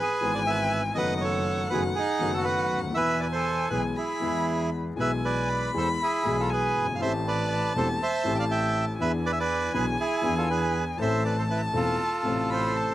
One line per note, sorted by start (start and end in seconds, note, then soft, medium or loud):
0.00 0.34 G#4 medium
0.00 0.32 B4 medium
0.00 0.99 G#5 medium
0.21 0.93 G#1 medium
0.21 0.93 G#2 medium
0.21 0.92 E3 medium
0.21 0.93 G#3 soft
0.21 0.93 B3 soft
0.25 0.94 G#4 medium
0.35 0.43 B4 medium
0.35 0.40 D5 medium
0.47 0.83 B4 medium
0.47 0.81 E5 medium
0.95 1.67 F#1 medium
0.95 1.67 F#2 medium
0.95 1.66 D#3 medium
0.95 1.67 F#3 medium
0.95 1.67 A3 soft
0.95 1.67 B3 medium
0.95 1.68 F#4 medium
0.95 1.14 B4 medium
0.95 1.14 D#5 medium
0.95 2.99 F#5 medium
1.17 1.67 C#5 medium
1.17 1.23 D#5 medium
1.24 1.69 A4 medium
1.70 1.92 F#1 medium
1.70 1.92 F#2 medium
1.70 1.92 D#3 medium
1.70 1.92 F#3 medium
1.70 1.92 A3 soft
1.70 1.92 B3 soft
1.70 1.92 F#4 medium
1.70 1.84 G#4 medium
1.70 1.81 B4 medium
1.95 2.32 D#4 medium
1.95 2.34 G#4 medium
2.19 2.70 F#1 medium
2.19 2.92 F#2 medium
2.19 2.91 D#3 medium
2.19 2.92 F#3 medium
2.19 2.92 A3 soft
2.19 2.93 B3 medium
2.19 2.93 F#4 medium
2.33 2.46 F#4 soft
2.33 2.45 A4 medium
2.44 2.81 F#4 soft
2.44 2.80 B4 medium
2.71 2.95 D2 soft
2.77 2.83 C#2 soft
2.83 2.89 D2 soft
2.89 2.95 D#2 medium
2.89 3.67 E3 medium
2.94 3.67 E2 medium
2.94 3.67 B2 soft
2.94 3.68 E4 medium
2.94 3.20 B4 medium
2.94 3.21 E5 medium
2.94 3.98 G#5 medium
3.20 3.28 B4 soft
3.20 3.26 D5 medium
3.32 3.69 A4 medium
3.32 3.68 C5 medium
3.70 3.92 B1 medium
3.70 3.93 B1 medium
3.70 3.92 B2 medium
3.70 3.92 E3 soft
3.70 3.92 G#3 soft
3.70 3.92 B3 soft
3.70 3.92 G#4 medium
3.70 3.84 G#4 soft
3.70 3.82 B4 medium
3.97 4.70 E4 soft
3.97 4.69 G#4 medium
3.97 4.73 B5 medium
4.21 4.94 E2 medium
4.21 4.94 E3 medium
4.21 4.94 G#3 soft
4.21 4.95 B3 soft
4.21 4.95 G#4 medium
4.96 5.70 B1 medium
4.96 5.71 B1 medium
4.96 5.71 B2 medium
4.96 5.70 E3 medium
4.96 5.70 G#3 soft
4.96 5.71 B3 soft
4.96 5.50 G#5 medium
5.00 5.72 G#4 medium
5.00 5.11 B4 medium
5.00 5.12 E5 medium
5.25 5.72 B4 medium
5.25 5.72 D5 medium
5.49 6.51 B5 medium
5.73 5.95 E2 medium
5.73 5.96 E2 medium
5.73 5.96 E3 medium
5.73 5.96 G#3 soft
5.73 5.96 B3 soft
5.73 5.96 G#4 medium
5.77 5.88 A4 soft
5.77 5.89 C5 medium
6.02 6.37 E4 soft
6.02 6.41 G#4 medium
6.23 6.75 B1 medium
6.23 6.97 B1 medium
6.23 6.97 B2 medium
6.23 6.96 E3 medium
6.23 6.96 G#3 soft
6.23 6.97 B3 soft
6.23 6.98 G#4 medium
6.40 6.51 F4 soft
6.40 6.52 A4 medium
6.50 6.86 G#4 soft
6.50 6.87 B4 medium
6.50 7.02 G#5 medium
6.75 6.99 G1 soft
6.83 6.89 F#1 soft
6.89 6.95 G1 soft
6.94 7.00 G#1 soft
6.94 7.01 F5 medium
6.99 7.71 A1 medium
6.99 7.72 A1 medium
6.99 7.72 A2 medium
6.99 7.71 E3 medium
6.99 7.72 A3 soft
6.99 7.73 C4 soft
6.99 7.13 C5 medium
6.99 7.13 E5 medium
6.99 8.99 A5 medium
7.04 7.73 G4 medium
7.28 7.73 B4 medium
7.28 7.73 D5 medium
7.75 7.96 E1 medium
7.75 7.96 E2 medium
7.75 7.97 E3 soft
7.75 7.97 A3 soft
7.75 7.96 C4 soft
7.75 7.97 G4 medium
7.75 7.88 A4 medium
7.75 7.88 C5 medium
8.03 8.33 C5 medium
8.03 8.37 E5 medium
8.24 8.96 A1 medium
8.24 8.96 A2 medium
8.24 8.95 E3 medium
8.24 8.95 A3 soft
8.24 8.96 C4 medium
8.24 8.97 G4 medium
8.35 8.38 G5 medium
8.39 8.45 D5 medium
8.39 8.45 F5 medium
8.51 8.85 E5 medium
8.51 8.85 G5 medium
8.99 9.70 E2 medium
8.99 9.71 E2 medium
8.99 9.71 E3 medium
8.99 9.71 B3 soft
8.99 9.71 D4 soft
8.99 9.12 B4 medium
8.99 9.12 E5 medium
8.99 10.99 G#5 medium
9.04 9.72 G#4 medium
9.26 9.32 B4 medium
9.26 9.32 D5 medium
9.32 9.39 E5 medium
9.40 9.73 B4 medium
9.40 9.72 D5 medium
9.73 9.95 B1 medium
9.73 9.95 B2 medium
9.73 9.95 E3 medium
9.73 9.94 B3 soft
9.73 9.95 D4 soft
9.73 9.95 G#4 medium
9.73 9.86 G#4 soft
9.73 9.85 B4 medium
10.00 10.35 E4 medium
10.00 10.38 G#4 medium
10.21 10.94 E2 medium
10.21 10.95 E2 medium
10.21 10.95 E3 medium
10.21 10.95 B3 medium
10.21 10.95 D4 medium
10.25 10.96 G#4 medium
10.37 10.49 F4 soft
10.37 10.49 A4 medium
10.50 10.85 G#4 medium
10.50 10.84 B4 medium
10.97 11.69 A1 medium
10.97 11.70 A1 medium
10.97 11.70 A2 medium
10.97 11.69 E3 medium
10.97 11.70 A3 soft
10.97 11.70 C4 medium
10.97 11.71 A4 medium
10.97 12.52 A5 medium
11.01 11.23 C5 medium
11.01 11.23 E5 medium
11.25 11.37 B4 soft
11.25 11.36 D5 medium
11.39 11.44 A4 soft
11.39 11.44 C5 medium
11.50 11.62 E4 medium
11.50 11.61 B4 medium
11.73 11.94 E1 medium
11.73 11.95 E1 medium
11.73 11.95 E2 medium
11.73 11.95 E3 medium
11.73 11.95 A3 soft
11.73 11.95 C4 medium
11.73 12.73 F4 medium
11.73 11.95 A4 medium
11.73 12.50 A4 medium
12.23 12.95 A1 medium
12.23 12.95 A2 medium
12.23 12.95 C3 soft
12.23 12.95 A3 soft
12.23 12.95 C4 soft
12.27 12.95 A4 medium
12.50 12.95 A4 soft
12.50 12.95 C5 medium
12.50 12.78 B5 medium
12.77 12.95 A5 medium